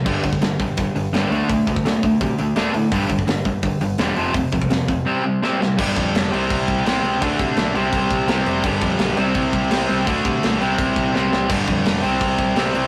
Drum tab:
CC |x---------------|----------------|----------------|----------------|
HH |--o-o-o-o-o-o-o-|o-o-o-o-o-o-o-o-|o-o-o-o-o-o-o-o-|o-o-o-o---------|
SD |----o-------o---|----o-------o---|----o-------o---|----o-------o-o-|
BD |o-oo--o-o-------|o-oo--o-o-------|o-oo--o-o-------|o-oo--o---------|

CC |x-x-x-x-x-x-x-x-|x-x-x-x-x-x-x-x-|x-x-x-x-x-x-x-x-|x-x-x-x-x-x-----|
HH |----------------|----------------|----------------|----------------|
SD |----o-------o---|----o-------o---|----o-------o---|----o-------o-o-|
BD |o-o-----o-o-----|o-o-----o-o-----|o-o-----o-o-----|o-o-----o-o-----|

CC |x-x-x-x-x-x-x-x-|
HH |----------------|
SD |----o-------o---|
BD |o-o-----o-o-----|